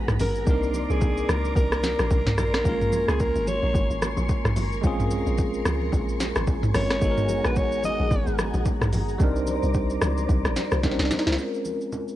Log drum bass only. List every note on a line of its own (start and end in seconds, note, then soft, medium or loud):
0.08 0.19 A#1 medium
0.20 0.45 G#1 loud
0.47 0.86 C2 loud
0.90 1.26 C2 loud
1.29 1.54 C#2 medium
1.56 1.96 C2 loud
1.99 2.10 A#1 medium
2.11 2.36 C2 loud
2.38 2.63 A#1 loud
2.65 3.05 A#1 loud
3.08 3.33 C#2 medium
3.36 3.61 G#1 loud
3.63 3.74 A#1 medium
3.75 3.89 G#1 loud
3.90 4.15 G#1 medium
4.17 4.28 A#1 medium
4.45 4.55 A#1 loud
4.56 4.81 G#1 loud
4.84 5.23 A#1 loud
5.27 5.62 A#1 loud
5.66 5.90 C#2 medium
5.93 6.32 A#1 medium
6.36 6.46 G#1 medium
6.47 6.72 A#1 medium
6.75 7.00 G#1 medium
7.02 7.41 G#1 loud
7.45 7.74 A#1 medium
7.72 7.97 G#1 medium
8.00 8.10 A#1 medium
8.11 8.25 G#1 loud
8.27 8.52 G#1 medium
8.54 8.64 A#1 medium
8.81 8.92 A#1 loud
8.93 9.18 G#1 loud
9.20 9.59 C2 loud
9.63 9.99 C2 loud
10.02 10.27 C#2 loud
10.29 10.44 C2 medium
10.45 10.55 A#1 loud
10.72 10.83 C2 loud
10.84 10.98 A#1 medium
10.99 11.10 C2 medium
11.27 11.37 C#2 loud